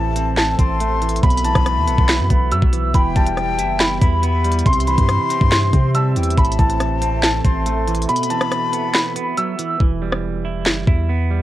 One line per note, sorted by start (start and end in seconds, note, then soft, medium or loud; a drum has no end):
0.00 0.55 A1 loud
0.00 0.59 A2 loud
0.00 0.80 E3 medium
0.00 1.20 C4 medium
0.00 1.21 A4 medium
0.00 8.05 E5 loud
0.00 0.33 A5 medium
0.00 0.55 A5 loud
0.16 0.58 C4 medium
0.16 closed hi-hat medium
0.37 1.19 A5 medium
0.37 snare loud
0.37 clap loud
0.37 closed hi-hat medium
0.59 1.21 A1 loud
0.59 1.23 C4 medium
0.59 1.19 C6 medium
0.59 kick medium
0.59 closed hi-hat medium
0.80 1.23 A3 medium
0.80 closed hi-hat medium
1.02 1.23 E3 medium
1.02 closed hi-hat soft
1.09 closed hi-hat medium
1.16 closed hi-hat medium
1.23 1.54 B1 loud
1.23 2.30 B2 loud
1.23 4.63 B3 medium
1.23 2.93 F#4 medium
1.23 1.42 B5 loud
1.23 2.48 B5 loud
1.23 kick loud
1.23 closed hi-hat medium
1.30 closed hi-hat medium
1.37 closed hi-hat medium
1.44 2.51 E3 medium
1.44 2.05 A5 medium
1.44 closed hi-hat medium
1.55 1.78 B1 loud
1.55 kick medium
1.55 cross-stick medium
1.55 closed hi-hat soft
1.66 cross-stick medium
1.66 closed hi-hat medium
1.77 1.89 D#2 loud
1.87 1.98 B1 loud
1.87 2.29 B3 medium
1.87 closed hi-hat medium
1.98 2.21 B1 loud
1.98 kick medium
2.08 2.49 B5 medium
2.08 snare loud
2.08 clap loud
2.08 closed hi-hat medium
2.20 2.30 F#2 loud
2.30 2.53 B1 loud
2.30 2.95 B3 medium
2.30 kick medium
2.30 closed hi-hat medium
2.52 2.62 F#2 loud
2.52 2.73 F#3 medium
2.52 2.92 E6 medium
2.52 closed hi-hat medium
2.62 2.93 B1 loud
2.62 kick medium
2.73 2.94 E3 medium
2.73 closed hi-hat medium
2.94 3.15 E1 loud
2.94 4.02 E3 loud
2.94 6.34 G4 medium
2.94 3.98 G5 loud
2.94 3.14 B5 medium
2.94 kick loud
2.94 closed hi-hat medium
3.16 3.60 E1 loud
3.16 4.23 G3 medium
3.16 3.76 A5 medium
3.16 kick loud
3.16 closed hi-hat soft
3.27 closed hi-hat medium
3.37 cross-stick medium
3.37 closed hi-hat medium
3.59 4.00 F#1 loud
3.59 4.00 E4 medium
3.59 closed hi-hat medium
3.80 4.62 B5 medium
3.80 snare loud
3.80 clap loud
3.80 closed hi-hat medium
4.02 4.63 E2 loud
4.02 4.66 E4 medium
4.02 4.62 B5 medium
4.02 kick medium
4.02 closed hi-hat medium
4.23 4.66 B3 medium
4.23 closed hi-hat medium
4.45 4.66 G3 medium
4.45 closed hi-hat soft
4.52 closed hi-hat medium
4.59 closed hi-hat medium
4.66 4.97 C2 loud
4.66 5.73 C3 medium
4.66 8.05 C4 medium
4.66 5.91 C6 loud
4.66 4.85 C6 loud
4.66 kick loud
4.66 closed hi-hat medium
4.73 closed hi-hat medium
4.80 closed hi-hat medium
4.87 5.95 E3 medium
4.87 5.48 B5 medium
4.87 closed hi-hat soft
4.98 5.19 G2 loud
4.98 kick medium
4.98 closed hi-hat medium
5.09 cross-stick medium
5.09 closed hi-hat medium
5.30 5.72 C4 loud
5.30 closed hi-hat medium
5.41 5.72 G2 loud
5.41 kick medium
5.51 5.92 C6 medium
5.51 snare loud
5.51 clap loud
5.51 closed hi-hat medium
5.73 6.17 C3 loud
5.73 6.37 C4 medium
5.73 kick medium
5.73 closed hi-hat medium
5.95 6.37 G3 medium
5.95 6.15 A5 medium
5.95 6.35 E6 medium
5.95 closed hi-hat medium
6.16 6.36 E2 loud
6.16 6.38 E3 medium
6.16 6.36 G5 medium
6.16 closed hi-hat soft
6.23 closed hi-hat medium
6.30 closed hi-hat medium
6.37 6.58 A1 loud
6.37 7.45 A2 loud
6.37 8.07 A4 medium
6.37 7.40 A5 loud
6.37 6.57 B5 loud
6.37 kick loud
6.37 closed hi-hat medium
6.45 closed hi-hat medium
6.52 closed hi-hat medium
6.59 7.41 A1 loud
6.59 7.66 E3 medium
6.59 7.19 A5 medium
6.59 kick loud
6.59 closed hi-hat soft
6.70 closed hi-hat medium
6.80 cross-stick medium
6.80 closed hi-hat medium
7.02 7.44 C4 medium
7.02 closed hi-hat medium
7.23 8.05 A5 medium
7.23 snare loud
7.23 clap loud
7.23 closed hi-hat medium
7.45 8.06 A1 loud
7.45 8.09 C4 medium
7.45 8.05 C6 medium
7.45 kick medium
7.45 closed hi-hat medium
7.66 8.09 A3 medium
7.66 closed hi-hat medium
7.88 8.09 E3 medium
7.88 closed hi-hat soft
7.95 closed hi-hat medium
8.02 closed hi-hat medium
8.09 9.16 B2 medium
8.09 9.79 B3 medium
8.09 9.79 F#4 medium
8.09 9.79 E5 medium
8.09 8.28 B5 loud
8.09 9.33 B5 loud
8.09 closed hi-hat medium
8.16 closed hi-hat medium
8.23 closed hi-hat medium
8.30 9.37 E3 medium
8.30 8.91 A5 medium
8.30 closed hi-hat medium
8.41 cross-stick medium
8.41 closed hi-hat soft
8.52 cross-stick medium
8.52 closed hi-hat medium
8.73 9.15 B3 medium
8.73 closed hi-hat medium
8.94 9.35 B5 medium
8.94 snare loud
8.94 clap loud
8.94 closed hi-hat medium
9.16 9.80 B3 medium
9.16 closed hi-hat medium
9.38 9.59 F#3 medium
9.38 9.78 E6 medium
9.38 closed hi-hat medium
9.59 9.79 E3 medium
9.59 closed hi-hat medium
9.80 10.67 E1 loud
9.80 10.88 E3 loud
9.80 kick loud
10.02 11.09 G3 medium
10.12 cross-stick medium
10.45 10.86 E4 medium
10.66 10.86 F#1 loud
10.66 snare loud
10.66 clap loud
10.87 11.42 E2 loud
10.87 11.42 E4 medium
10.87 kick medium
11.09 11.42 B3 medium
11.31 11.42 G3 medium